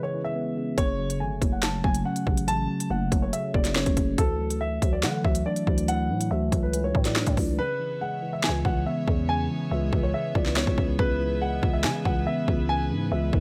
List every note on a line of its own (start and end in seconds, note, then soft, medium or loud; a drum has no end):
0.00 0.57 C#3 medium
0.00 0.14 E3 medium
0.00 0.56 G#3 medium
0.00 0.35 B3 medium
0.00 0.20 C#5 medium
0.14 0.78 E3 medium
0.24 0.74 E5 medium
0.35 0.78 B3 medium
0.57 0.77 C#3 medium
0.78 1.22 F#1 loud
0.78 1.62 C#3 medium
0.78 1.18 C#5 loud
0.78 kick loud
0.78 closed hi-hat medium
0.99 1.40 F#3 medium
1.10 closed hi-hat medium
1.20 1.32 G#1 loud
1.20 2.27 A3 medium
1.20 1.50 G#5 medium
1.31 1.41 F#1 medium
1.41 1.82 F#1 loud
1.41 1.83 F#3 medium
1.41 kick loud
1.41 closed hi-hat medium
1.52 1.61 F#5 medium
1.62 2.25 C#3 medium
1.62 1.80 A5 medium
1.62 finger snap loud
1.62 snare loud
1.62 closed hi-hat medium
1.84 2.05 F#1 loud
1.84 2.68 F#3 medium
1.84 2.01 G#5 medium
1.84 kick medium
1.94 closed hi-hat medium
2.05 3.12 C#4 loud
2.05 2.45 F#5 medium
2.16 closed hi-hat medium
2.27 2.68 A1 loud
2.27 2.46 C#3 medium
2.27 kick medium
2.37 closed hi-hat medium
2.48 3.32 C#3 medium
2.48 2.88 A5 loud
2.48 closed hi-hat medium
2.69 3.11 F#3 medium
2.80 closed hi-hat medium
2.90 3.11 F#1 loud
2.90 3.97 A3 medium
2.90 3.21 F#5 medium
3.12 3.32 F#1 loud
3.12 3.53 F#3 medium
3.12 kick loud
3.12 closed hi-hat medium
3.22 3.31 C#5 medium
3.33 3.96 C#3 medium
3.33 3.50 E5 medium
3.33 closed hi-hat medium
3.54 3.85 F#1 loud
3.54 4.18 F#3 medium
3.54 3.71 D5 medium
3.54 kick medium
3.65 snare medium
3.65 closed hi-hat medium
3.75 4.18 C#4 medium
3.75 4.16 C#5 medium
3.75 finger snap medium
3.75 snare loud
3.86 3.96 F#1 loud
3.86 kick medium
3.86 closed hi-hat medium
3.97 4.17 F#1 loud
3.97 4.18 C#3 medium
3.97 kick medium
3.97 closed hi-hat medium
4.18 4.79 D2 loud
4.18 5.01 E3 loud
4.18 4.58 A4 loud
4.18 kick loud
4.18 closed hi-hat medium
4.39 4.81 F#3 medium
4.50 closed hi-hat medium
4.61 5.67 A3 medium
4.61 4.91 E5 medium
4.82 5.05 D2 loud
4.82 5.23 F#3 medium
4.82 kick loud
4.82 closed hi-hat medium
4.93 5.01 D5 medium
5.02 5.23 D3 loud
5.02 5.65 E3 medium
5.02 5.20 F#5 medium
5.02 finger snap medium
5.02 snare loud
5.02 closed hi-hat medium
5.24 5.45 D2 loud
5.24 6.09 F#3 medium
5.24 5.42 E5 medium
5.24 kick medium
5.35 closed hi-hat medium
5.46 6.52 D4 medium
5.46 5.86 D5 medium
5.56 closed hi-hat medium
5.67 6.11 D2 loud
5.67 5.87 E3 medium
5.67 kick medium
5.78 closed hi-hat medium
5.88 6.72 E3 loud
5.88 6.28 F#5 loud
5.88 closed hi-hat medium
6.10 6.30 A2 loud
6.10 6.51 F#3 medium
6.21 closed hi-hat medium
6.31 6.51 D2 loud
6.31 7.37 A3 loud
6.31 6.61 E5 medium
6.52 6.93 C#2 loud
6.52 6.94 F#3 medium
6.52 kick loud
6.52 closed hi-hat medium
6.63 6.80 B4 medium
6.73 7.36 E3 medium
6.73 closed hi-hat medium
6.84 7.01 C#5 medium
6.95 7.25 A2 loud
6.95 7.59 F#3 medium
6.95 kick medium
7.05 7.55 D5 medium
7.05 snare medium
7.05 closed hi-hat medium
7.15 7.59 D4 medium
7.15 finger snap medium
7.15 snare loud
7.26 7.37 A2 loud
7.26 kick medium
7.26 closed hi-hat medium
7.37 7.59 C#2 loud
7.37 7.58 E3 medium
7.37 kick medium
7.37 open hi-hat medium
7.58 8.42 C#3 loud
7.58 13.40 B3 medium
7.58 13.40 G#4 medium
7.58 7.99 B4 loud
7.58 10.96 C#5 medium
7.58 13.40 E5 medium
7.79 8.21 E3 medium
8.01 9.08 G#3 medium
8.01 8.31 F#5 medium
8.22 8.64 E3 medium
8.33 8.42 E5 medium
8.43 9.06 C#3 medium
8.43 8.61 G#5 medium
8.43 finger snap medium
8.43 snare loud
8.49 8.64 C#2 loud
8.65 8.85 C#2 loud
8.65 9.49 E3 medium
8.65 8.82 F#5 medium
8.65 kick medium
8.86 9.93 B3 loud
8.86 9.26 E5 medium
9.07 9.48 E2 loud
9.07 9.28 C#3 medium
9.07 kick medium
9.29 10.13 C#3 medium
9.29 9.69 G#5 loud
9.50 9.91 E3 medium
9.71 9.92 C#2 loud
9.71 10.78 G#3 medium
9.71 10.01 E5 medium
9.92 10.13 C#2 loud
9.92 10.34 E3 medium
9.92 kick loud
10.03 10.12 C#5 medium
10.14 10.76 C#3 medium
10.14 10.31 E5 medium
10.35 10.66 C#2 loud
10.35 11.19 E3 medium
10.35 10.52 D5 medium
10.35 kick medium
10.46 snare medium
10.56 11.63 B3 medium
10.56 10.96 C#5 medium
10.56 finger snap medium
10.56 snare loud
10.67 10.77 C#2 loud
10.67 kick loud
10.77 10.98 C#2 loud
10.77 10.98 C#3 medium
10.77 kick medium
10.99 11.60 C#2 loud
10.99 11.82 C#3 loud
10.99 11.39 B4 loud
10.99 13.40 B4 medium
10.99 kick loud
11.20 11.62 E3 medium
11.41 12.48 G#3 medium
11.41 11.72 F#5 medium
11.63 11.86 C#2 loud
11.63 12.04 E3 medium
11.63 kick loud
11.73 11.82 E5 medium
11.83 12.46 C#3 medium
11.83 12.04 C#3 loud
11.83 12.01 G#5 medium
11.83 finger snap loud
11.83 snare loud
12.05 12.26 C#2 loud
12.05 12.89 E3 medium
12.05 12.22 F#5 medium
12.05 kick loud
12.27 13.33 B3 medium
12.27 12.67 E5 medium
12.48 12.92 C#2 loud
12.48 12.69 C#3 medium
12.48 kick medium
12.69 13.40 C#3 medium
12.69 13.09 G#5 loud
12.90 13.11 G#2 loud
12.90 13.32 E3 medium
13.12 13.32 C#2 loud
13.12 13.40 G#3 medium
13.12 13.40 E5 medium
13.33 13.40 B1 loud
13.33 13.40 E3 medium
13.33 kick loud